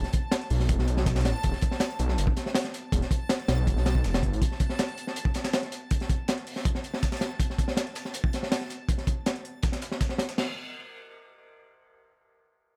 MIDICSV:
0, 0, Header, 1, 4, 480
1, 0, Start_track
1, 0, Key_signature, 1, "minor"
1, 0, Tempo, 372671
1, 1850, Time_signature, 4, 2, 24, 8
1, 16440, End_track
2, 0, Start_track
2, 0, Title_t, "Synth texture"
2, 0, Program_c, 0, 99
2, 0, Note_on_c, 0, 81, 84
2, 9541, Note_off_c, 0, 81, 0
2, 16440, End_track
3, 0, Start_track
3, 0, Title_t, "Detuned saw bass"
3, 0, Program_c, 1, 39
3, 652, Note_on_c, 1, 35, 100
3, 890, Note_on_c, 1, 28, 103
3, 909, Note_off_c, 1, 35, 0
3, 1001, Note_off_c, 1, 28, 0
3, 1015, Note_on_c, 1, 35, 97
3, 1610, Note_on_c, 1, 33, 99
3, 1629, Note_off_c, 1, 35, 0
3, 1721, Note_off_c, 1, 33, 0
3, 1855, Note_on_c, 1, 28, 96
3, 1963, Note_off_c, 1, 28, 0
3, 2570, Note_on_c, 1, 35, 99
3, 2787, Note_off_c, 1, 35, 0
3, 2808, Note_on_c, 1, 31, 95
3, 2920, Note_off_c, 1, 31, 0
3, 3765, Note_on_c, 1, 28, 96
3, 3878, Note_off_c, 1, 28, 0
3, 4489, Note_on_c, 1, 35, 95
3, 4727, Note_on_c, 1, 28, 100
3, 4746, Note_off_c, 1, 35, 0
3, 4839, Note_off_c, 1, 28, 0
3, 4849, Note_on_c, 1, 35, 96
3, 5210, Note_on_c, 1, 28, 92
3, 5229, Note_off_c, 1, 35, 0
3, 5444, Note_on_c, 1, 31, 84
3, 5463, Note_off_c, 1, 28, 0
3, 5573, Note_on_c, 1, 33, 82
3, 5592, Note_off_c, 1, 31, 0
3, 5678, Note_off_c, 1, 33, 0
3, 16440, End_track
4, 0, Start_track
4, 0, Title_t, "Drums"
4, 54, Note_on_c, 9, 38, 40
4, 55, Note_on_c, 9, 42, 41
4, 163, Note_off_c, 9, 42, 0
4, 163, Note_on_c, 9, 42, 68
4, 171, Note_off_c, 9, 42, 0
4, 171, Note_on_c, 9, 42, 65
4, 175, Note_on_c, 9, 36, 93
4, 183, Note_off_c, 9, 38, 0
4, 300, Note_off_c, 9, 42, 0
4, 304, Note_off_c, 9, 36, 0
4, 405, Note_on_c, 9, 38, 114
4, 408, Note_on_c, 9, 42, 83
4, 411, Note_off_c, 9, 38, 0
4, 411, Note_off_c, 9, 42, 0
4, 411, Note_on_c, 9, 38, 114
4, 411, Note_on_c, 9, 42, 85
4, 534, Note_off_c, 9, 42, 0
4, 534, Note_on_c, 9, 42, 42
4, 540, Note_off_c, 9, 38, 0
4, 646, Note_on_c, 9, 46, 71
4, 649, Note_off_c, 9, 42, 0
4, 649, Note_on_c, 9, 42, 66
4, 773, Note_on_c, 9, 38, 36
4, 775, Note_off_c, 9, 46, 0
4, 778, Note_off_c, 9, 42, 0
4, 887, Note_on_c, 9, 42, 90
4, 891, Note_off_c, 9, 42, 0
4, 891, Note_on_c, 9, 36, 98
4, 891, Note_on_c, 9, 42, 84
4, 902, Note_off_c, 9, 38, 0
4, 1015, Note_on_c, 9, 38, 47
4, 1019, Note_off_c, 9, 42, 0
4, 1020, Note_off_c, 9, 36, 0
4, 1126, Note_on_c, 9, 42, 57
4, 1132, Note_off_c, 9, 42, 0
4, 1132, Note_on_c, 9, 42, 65
4, 1143, Note_off_c, 9, 38, 0
4, 1249, Note_on_c, 9, 38, 53
4, 1260, Note_off_c, 9, 42, 0
4, 1368, Note_on_c, 9, 36, 86
4, 1371, Note_off_c, 9, 38, 0
4, 1371, Note_on_c, 9, 38, 103
4, 1371, Note_on_c, 9, 42, 74
4, 1375, Note_off_c, 9, 42, 0
4, 1375, Note_on_c, 9, 42, 52
4, 1489, Note_off_c, 9, 38, 0
4, 1489, Note_on_c, 9, 38, 53
4, 1494, Note_off_c, 9, 38, 0
4, 1494, Note_off_c, 9, 42, 0
4, 1494, Note_on_c, 9, 38, 83
4, 1494, Note_on_c, 9, 42, 61
4, 1497, Note_off_c, 9, 36, 0
4, 1552, Note_off_c, 9, 38, 0
4, 1552, Note_off_c, 9, 42, 0
4, 1552, Note_on_c, 9, 38, 83
4, 1552, Note_on_c, 9, 42, 65
4, 1611, Note_off_c, 9, 38, 0
4, 1611, Note_off_c, 9, 42, 0
4, 1611, Note_on_c, 9, 38, 100
4, 1611, Note_on_c, 9, 42, 66
4, 1614, Note_off_c, 9, 42, 0
4, 1614, Note_on_c, 9, 42, 79
4, 1740, Note_off_c, 9, 38, 0
4, 1743, Note_off_c, 9, 42, 0
4, 1844, Note_on_c, 9, 42, 79
4, 1851, Note_off_c, 9, 42, 0
4, 1851, Note_on_c, 9, 42, 84
4, 1857, Note_on_c, 9, 36, 92
4, 1965, Note_on_c, 9, 38, 40
4, 1980, Note_off_c, 9, 42, 0
4, 1985, Note_off_c, 9, 36, 0
4, 2078, Note_on_c, 9, 42, 68
4, 2091, Note_on_c, 9, 36, 97
4, 2092, Note_off_c, 9, 42, 0
4, 2092, Note_on_c, 9, 42, 67
4, 2094, Note_off_c, 9, 38, 0
4, 2208, Note_on_c, 9, 38, 55
4, 2220, Note_off_c, 9, 36, 0
4, 2221, Note_off_c, 9, 42, 0
4, 2317, Note_on_c, 9, 42, 81
4, 2319, Note_off_c, 9, 38, 0
4, 2319, Note_on_c, 9, 38, 116
4, 2330, Note_off_c, 9, 38, 0
4, 2330, Note_off_c, 9, 42, 0
4, 2330, Note_on_c, 9, 38, 117
4, 2330, Note_on_c, 9, 42, 85
4, 2454, Note_off_c, 9, 42, 0
4, 2454, Note_on_c, 9, 42, 41
4, 2459, Note_off_c, 9, 38, 0
4, 2564, Note_off_c, 9, 42, 0
4, 2564, Note_on_c, 9, 42, 68
4, 2571, Note_off_c, 9, 42, 0
4, 2571, Note_on_c, 9, 42, 65
4, 2687, Note_on_c, 9, 38, 37
4, 2700, Note_off_c, 9, 42, 0
4, 2808, Note_on_c, 9, 42, 80
4, 2810, Note_off_c, 9, 42, 0
4, 2810, Note_on_c, 9, 42, 83
4, 2816, Note_off_c, 9, 38, 0
4, 2925, Note_on_c, 9, 36, 94
4, 2939, Note_off_c, 9, 42, 0
4, 3046, Note_on_c, 9, 42, 56
4, 3051, Note_on_c, 9, 38, 45
4, 3052, Note_off_c, 9, 42, 0
4, 3052, Note_on_c, 9, 42, 66
4, 3053, Note_off_c, 9, 36, 0
4, 3172, Note_off_c, 9, 38, 0
4, 3172, Note_on_c, 9, 38, 48
4, 3180, Note_off_c, 9, 42, 0
4, 3278, Note_off_c, 9, 38, 0
4, 3278, Note_on_c, 9, 38, 109
4, 3287, Note_on_c, 9, 42, 90
4, 3290, Note_off_c, 9, 38, 0
4, 3290, Note_on_c, 9, 38, 111
4, 3290, Note_on_c, 9, 46, 78
4, 3406, Note_off_c, 9, 38, 0
4, 3406, Note_on_c, 9, 38, 45
4, 3416, Note_off_c, 9, 42, 0
4, 3416, Note_on_c, 9, 42, 40
4, 3419, Note_off_c, 9, 46, 0
4, 3530, Note_off_c, 9, 38, 0
4, 3530, Note_off_c, 9, 42, 0
4, 3530, Note_on_c, 9, 38, 36
4, 3530, Note_on_c, 9, 42, 67
4, 3531, Note_off_c, 9, 42, 0
4, 3531, Note_on_c, 9, 42, 59
4, 3658, Note_off_c, 9, 38, 0
4, 3660, Note_off_c, 9, 42, 0
4, 3766, Note_on_c, 9, 36, 106
4, 3770, Note_on_c, 9, 42, 79
4, 3891, Note_on_c, 9, 38, 40
4, 3893, Note_off_c, 9, 42, 0
4, 3893, Note_on_c, 9, 42, 39
4, 3895, Note_off_c, 9, 36, 0
4, 4002, Note_on_c, 9, 36, 95
4, 4005, Note_off_c, 9, 42, 0
4, 4005, Note_on_c, 9, 42, 68
4, 4009, Note_off_c, 9, 42, 0
4, 4009, Note_on_c, 9, 42, 60
4, 4019, Note_off_c, 9, 38, 0
4, 4131, Note_off_c, 9, 36, 0
4, 4138, Note_off_c, 9, 42, 0
4, 4242, Note_on_c, 9, 38, 115
4, 4245, Note_on_c, 9, 42, 77
4, 4248, Note_off_c, 9, 38, 0
4, 4248, Note_off_c, 9, 42, 0
4, 4248, Note_on_c, 9, 38, 105
4, 4248, Note_on_c, 9, 42, 78
4, 4373, Note_off_c, 9, 42, 0
4, 4373, Note_on_c, 9, 42, 37
4, 4377, Note_off_c, 9, 38, 0
4, 4486, Note_off_c, 9, 42, 0
4, 4486, Note_on_c, 9, 38, 100
4, 4486, Note_on_c, 9, 42, 77
4, 4492, Note_off_c, 9, 42, 0
4, 4492, Note_on_c, 9, 42, 60
4, 4615, Note_off_c, 9, 38, 0
4, 4621, Note_off_c, 9, 42, 0
4, 4728, Note_on_c, 9, 36, 105
4, 4729, Note_on_c, 9, 42, 83
4, 4733, Note_off_c, 9, 42, 0
4, 4733, Note_on_c, 9, 42, 85
4, 4857, Note_off_c, 9, 36, 0
4, 4857, Note_on_c, 9, 38, 43
4, 4862, Note_off_c, 9, 42, 0
4, 4969, Note_on_c, 9, 42, 64
4, 4971, Note_off_c, 9, 38, 0
4, 4971, Note_off_c, 9, 42, 0
4, 4971, Note_on_c, 9, 38, 104
4, 4971, Note_on_c, 9, 42, 65
4, 5089, Note_on_c, 9, 36, 77
4, 5099, Note_off_c, 9, 42, 0
4, 5100, Note_off_c, 9, 38, 0
4, 5204, Note_on_c, 9, 42, 60
4, 5209, Note_off_c, 9, 42, 0
4, 5209, Note_on_c, 9, 38, 113
4, 5209, Note_on_c, 9, 42, 80
4, 5218, Note_off_c, 9, 36, 0
4, 5335, Note_off_c, 9, 42, 0
4, 5335, Note_on_c, 9, 42, 71
4, 5336, Note_off_c, 9, 38, 0
4, 5336, Note_on_c, 9, 38, 92
4, 5446, Note_on_c, 9, 36, 76
4, 5449, Note_off_c, 9, 42, 0
4, 5449, Note_on_c, 9, 42, 64
4, 5465, Note_off_c, 9, 38, 0
4, 5575, Note_off_c, 9, 36, 0
4, 5578, Note_off_c, 9, 42, 0
4, 5581, Note_on_c, 9, 42, 53
4, 5688, Note_on_c, 9, 36, 101
4, 5689, Note_off_c, 9, 42, 0
4, 5689, Note_on_c, 9, 42, 81
4, 5698, Note_off_c, 9, 42, 0
4, 5698, Note_on_c, 9, 42, 87
4, 5817, Note_off_c, 9, 36, 0
4, 5817, Note_on_c, 9, 38, 34
4, 5827, Note_off_c, 9, 42, 0
4, 5921, Note_on_c, 9, 42, 65
4, 5926, Note_on_c, 9, 36, 92
4, 5928, Note_off_c, 9, 42, 0
4, 5928, Note_on_c, 9, 42, 68
4, 5946, Note_off_c, 9, 38, 0
4, 6048, Note_on_c, 9, 38, 52
4, 6055, Note_off_c, 9, 36, 0
4, 6057, Note_off_c, 9, 42, 0
4, 6166, Note_on_c, 9, 42, 74
4, 6169, Note_off_c, 9, 38, 0
4, 6169, Note_off_c, 9, 42, 0
4, 6169, Note_on_c, 9, 38, 113
4, 6169, Note_on_c, 9, 42, 82
4, 6174, Note_off_c, 9, 38, 0
4, 6174, Note_on_c, 9, 38, 115
4, 6293, Note_off_c, 9, 42, 0
4, 6293, Note_on_c, 9, 42, 41
4, 6302, Note_off_c, 9, 38, 0
4, 6410, Note_off_c, 9, 42, 0
4, 6410, Note_on_c, 9, 42, 67
4, 6411, Note_off_c, 9, 42, 0
4, 6411, Note_on_c, 9, 42, 66
4, 6535, Note_on_c, 9, 38, 42
4, 6540, Note_off_c, 9, 42, 0
4, 6648, Note_on_c, 9, 42, 82
4, 6649, Note_off_c, 9, 42, 0
4, 6649, Note_on_c, 9, 42, 81
4, 6663, Note_off_c, 9, 38, 0
4, 6765, Note_on_c, 9, 36, 95
4, 6778, Note_off_c, 9, 42, 0
4, 6880, Note_on_c, 9, 42, 67
4, 6888, Note_off_c, 9, 42, 0
4, 6888, Note_on_c, 9, 38, 101
4, 6888, Note_on_c, 9, 42, 77
4, 6893, Note_off_c, 9, 36, 0
4, 6898, Note_off_c, 9, 38, 0
4, 6898, Note_on_c, 9, 38, 46
4, 7011, Note_off_c, 9, 38, 0
4, 7011, Note_on_c, 9, 38, 51
4, 7013, Note_off_c, 9, 38, 0
4, 7013, Note_off_c, 9, 42, 0
4, 7013, Note_on_c, 9, 38, 101
4, 7013, Note_on_c, 9, 42, 75
4, 7125, Note_off_c, 9, 42, 0
4, 7125, Note_on_c, 9, 42, 81
4, 7128, Note_off_c, 9, 38, 0
4, 7128, Note_on_c, 9, 38, 109
4, 7128, Note_on_c, 9, 46, 73
4, 7129, Note_off_c, 9, 38, 0
4, 7129, Note_on_c, 9, 38, 102
4, 7246, Note_off_c, 9, 38, 0
4, 7246, Note_on_c, 9, 38, 38
4, 7252, Note_off_c, 9, 42, 0
4, 7252, Note_on_c, 9, 42, 42
4, 7257, Note_off_c, 9, 46, 0
4, 7366, Note_off_c, 9, 42, 0
4, 7366, Note_on_c, 9, 42, 67
4, 7369, Note_off_c, 9, 38, 0
4, 7369, Note_off_c, 9, 42, 0
4, 7369, Note_on_c, 9, 38, 36
4, 7369, Note_on_c, 9, 42, 64
4, 7498, Note_off_c, 9, 38, 0
4, 7498, Note_off_c, 9, 42, 0
4, 7608, Note_on_c, 9, 42, 86
4, 7614, Note_on_c, 9, 36, 93
4, 7616, Note_off_c, 9, 42, 0
4, 7616, Note_on_c, 9, 42, 75
4, 7732, Note_off_c, 9, 42, 0
4, 7732, Note_on_c, 9, 42, 39
4, 7743, Note_off_c, 9, 36, 0
4, 7743, Note_on_c, 9, 38, 46
4, 7850, Note_off_c, 9, 42, 0
4, 7850, Note_on_c, 9, 42, 66
4, 7851, Note_on_c, 9, 36, 92
4, 7854, Note_off_c, 9, 42, 0
4, 7854, Note_on_c, 9, 42, 60
4, 7872, Note_off_c, 9, 38, 0
4, 7980, Note_off_c, 9, 36, 0
4, 7982, Note_off_c, 9, 42, 0
4, 8090, Note_on_c, 9, 38, 116
4, 8090, Note_on_c, 9, 42, 83
4, 8096, Note_off_c, 9, 42, 0
4, 8096, Note_on_c, 9, 42, 78
4, 8097, Note_off_c, 9, 38, 0
4, 8097, Note_on_c, 9, 38, 100
4, 8213, Note_off_c, 9, 42, 0
4, 8213, Note_on_c, 9, 42, 40
4, 8226, Note_off_c, 9, 38, 0
4, 8330, Note_off_c, 9, 42, 0
4, 8330, Note_on_c, 9, 42, 65
4, 8336, Note_on_c, 9, 46, 72
4, 8450, Note_on_c, 9, 38, 41
4, 8459, Note_off_c, 9, 42, 0
4, 8464, Note_off_c, 9, 46, 0
4, 8569, Note_on_c, 9, 36, 115
4, 8569, Note_on_c, 9, 42, 83
4, 8570, Note_off_c, 9, 42, 0
4, 8570, Note_on_c, 9, 42, 82
4, 8579, Note_off_c, 9, 38, 0
4, 8692, Note_on_c, 9, 38, 46
4, 8698, Note_off_c, 9, 36, 0
4, 8699, Note_off_c, 9, 42, 0
4, 8810, Note_on_c, 9, 42, 66
4, 8816, Note_off_c, 9, 42, 0
4, 8816, Note_on_c, 9, 42, 67
4, 8821, Note_off_c, 9, 38, 0
4, 8933, Note_on_c, 9, 38, 50
4, 8945, Note_off_c, 9, 42, 0
4, 9052, Note_off_c, 9, 38, 0
4, 9052, Note_on_c, 9, 38, 100
4, 9052, Note_on_c, 9, 42, 75
4, 9053, Note_on_c, 9, 36, 75
4, 9055, Note_off_c, 9, 42, 0
4, 9055, Note_on_c, 9, 42, 61
4, 9172, Note_off_c, 9, 38, 0
4, 9172, Note_on_c, 9, 38, 52
4, 9173, Note_off_c, 9, 38, 0
4, 9173, Note_off_c, 9, 42, 0
4, 9173, Note_on_c, 9, 38, 82
4, 9173, Note_on_c, 9, 42, 61
4, 9182, Note_off_c, 9, 36, 0
4, 9233, Note_off_c, 9, 38, 0
4, 9233, Note_off_c, 9, 42, 0
4, 9233, Note_on_c, 9, 38, 81
4, 9233, Note_on_c, 9, 42, 61
4, 9288, Note_off_c, 9, 38, 0
4, 9288, Note_on_c, 9, 38, 93
4, 9291, Note_off_c, 9, 42, 0
4, 9291, Note_on_c, 9, 42, 61
4, 9292, Note_off_c, 9, 42, 0
4, 9292, Note_on_c, 9, 42, 73
4, 9416, Note_off_c, 9, 38, 0
4, 9421, Note_off_c, 9, 42, 0
4, 9526, Note_on_c, 9, 36, 96
4, 9529, Note_on_c, 9, 42, 86
4, 9530, Note_off_c, 9, 42, 0
4, 9530, Note_on_c, 9, 42, 81
4, 9654, Note_off_c, 9, 36, 0
4, 9659, Note_off_c, 9, 42, 0
4, 9661, Note_on_c, 9, 38, 38
4, 9769, Note_on_c, 9, 36, 82
4, 9772, Note_on_c, 9, 42, 65
4, 9773, Note_off_c, 9, 42, 0
4, 9773, Note_on_c, 9, 42, 60
4, 9789, Note_off_c, 9, 38, 0
4, 9889, Note_on_c, 9, 38, 57
4, 9897, Note_off_c, 9, 36, 0
4, 9902, Note_off_c, 9, 42, 0
4, 10005, Note_off_c, 9, 38, 0
4, 10005, Note_on_c, 9, 38, 99
4, 10013, Note_off_c, 9, 38, 0
4, 10013, Note_on_c, 9, 38, 114
4, 10013, Note_on_c, 9, 42, 85
4, 10135, Note_off_c, 9, 42, 0
4, 10135, Note_on_c, 9, 42, 41
4, 10141, Note_off_c, 9, 38, 0
4, 10243, Note_off_c, 9, 42, 0
4, 10243, Note_on_c, 9, 42, 68
4, 10253, Note_off_c, 9, 42, 0
4, 10253, Note_on_c, 9, 38, 99
4, 10253, Note_on_c, 9, 42, 74
4, 10371, Note_off_c, 9, 38, 0
4, 10371, Note_on_c, 9, 38, 38
4, 10382, Note_off_c, 9, 42, 0
4, 10482, Note_on_c, 9, 42, 88
4, 10493, Note_off_c, 9, 42, 0
4, 10493, Note_on_c, 9, 42, 83
4, 10500, Note_off_c, 9, 38, 0
4, 10610, Note_on_c, 9, 36, 97
4, 10622, Note_off_c, 9, 42, 0
4, 10730, Note_on_c, 9, 42, 64
4, 10732, Note_off_c, 9, 42, 0
4, 10732, Note_on_c, 9, 42, 64
4, 10739, Note_off_c, 9, 36, 0
4, 10740, Note_on_c, 9, 38, 50
4, 10856, Note_off_c, 9, 38, 0
4, 10856, Note_on_c, 9, 38, 53
4, 10861, Note_off_c, 9, 42, 0
4, 10969, Note_off_c, 9, 38, 0
4, 10969, Note_on_c, 9, 38, 106
4, 10971, Note_off_c, 9, 38, 0
4, 10971, Note_on_c, 9, 38, 110
4, 10971, Note_on_c, 9, 46, 72
4, 10973, Note_on_c, 9, 42, 83
4, 11093, Note_off_c, 9, 38, 0
4, 11093, Note_on_c, 9, 38, 38
4, 11094, Note_off_c, 9, 42, 0
4, 11094, Note_on_c, 9, 42, 40
4, 11099, Note_off_c, 9, 46, 0
4, 11206, Note_off_c, 9, 42, 0
4, 11206, Note_on_c, 9, 42, 59
4, 11211, Note_off_c, 9, 38, 0
4, 11211, Note_off_c, 9, 42, 0
4, 11211, Note_on_c, 9, 38, 35
4, 11211, Note_on_c, 9, 42, 66
4, 11339, Note_off_c, 9, 38, 0
4, 11339, Note_off_c, 9, 42, 0
4, 11445, Note_on_c, 9, 36, 103
4, 11448, Note_on_c, 9, 42, 74
4, 11450, Note_off_c, 9, 42, 0
4, 11450, Note_on_c, 9, 42, 85
4, 11566, Note_on_c, 9, 38, 40
4, 11574, Note_off_c, 9, 36, 0
4, 11574, Note_off_c, 9, 42, 0
4, 11574, Note_on_c, 9, 42, 41
4, 11682, Note_off_c, 9, 42, 0
4, 11682, Note_on_c, 9, 42, 64
4, 11684, Note_on_c, 9, 36, 88
4, 11690, Note_off_c, 9, 42, 0
4, 11690, Note_on_c, 9, 42, 65
4, 11695, Note_off_c, 9, 38, 0
4, 11813, Note_off_c, 9, 36, 0
4, 11819, Note_off_c, 9, 42, 0
4, 11927, Note_on_c, 9, 42, 77
4, 11929, Note_off_c, 9, 42, 0
4, 11929, Note_on_c, 9, 38, 108
4, 11929, Note_on_c, 9, 42, 86
4, 11931, Note_off_c, 9, 38, 0
4, 11931, Note_on_c, 9, 38, 102
4, 12053, Note_off_c, 9, 42, 0
4, 12053, Note_on_c, 9, 42, 39
4, 12060, Note_off_c, 9, 38, 0
4, 12171, Note_off_c, 9, 42, 0
4, 12171, Note_on_c, 9, 42, 64
4, 12300, Note_off_c, 9, 42, 0
4, 12397, Note_on_c, 9, 42, 75
4, 12409, Note_on_c, 9, 36, 107
4, 12411, Note_off_c, 9, 42, 0
4, 12411, Note_on_c, 9, 38, 94
4, 12411, Note_on_c, 9, 42, 75
4, 12524, Note_off_c, 9, 38, 0
4, 12524, Note_on_c, 9, 38, 47
4, 12533, Note_off_c, 9, 38, 0
4, 12533, Note_off_c, 9, 42, 0
4, 12533, Note_on_c, 9, 38, 99
4, 12533, Note_on_c, 9, 42, 76
4, 12537, Note_off_c, 9, 36, 0
4, 12643, Note_off_c, 9, 42, 0
4, 12643, Note_on_c, 9, 42, 62
4, 12652, Note_off_c, 9, 38, 0
4, 12652, Note_off_c, 9, 42, 0
4, 12652, Note_on_c, 9, 38, 99
4, 12652, Note_on_c, 9, 42, 76
4, 12771, Note_off_c, 9, 38, 0
4, 12771, Note_on_c, 9, 38, 47
4, 12780, Note_off_c, 9, 42, 0
4, 12889, Note_off_c, 9, 38, 0
4, 12889, Note_on_c, 9, 38, 110
4, 12889, Note_on_c, 9, 42, 83
4, 12891, Note_on_c, 9, 36, 74
4, 12897, Note_off_c, 9, 42, 0
4, 12897, Note_on_c, 9, 42, 59
4, 13000, Note_off_c, 9, 38, 0
4, 13000, Note_on_c, 9, 38, 49
4, 13019, Note_off_c, 9, 36, 0
4, 13026, Note_off_c, 9, 42, 0
4, 13118, Note_off_c, 9, 38, 0
4, 13118, Note_on_c, 9, 38, 95
4, 13127, Note_on_c, 9, 42, 75
4, 13130, Note_off_c, 9, 42, 0
4, 13130, Note_on_c, 9, 42, 63
4, 13246, Note_off_c, 9, 38, 0
4, 13251, Note_off_c, 9, 42, 0
4, 13251, Note_on_c, 9, 38, 98
4, 13251, Note_on_c, 9, 42, 75
4, 13369, Note_off_c, 9, 38, 0
4, 13369, Note_on_c, 9, 38, 90
4, 13369, Note_on_c, 9, 49, 78
4, 13379, Note_off_c, 9, 42, 0
4, 13498, Note_off_c, 9, 38, 0
4, 13498, Note_off_c, 9, 49, 0
4, 16440, End_track
0, 0, End_of_file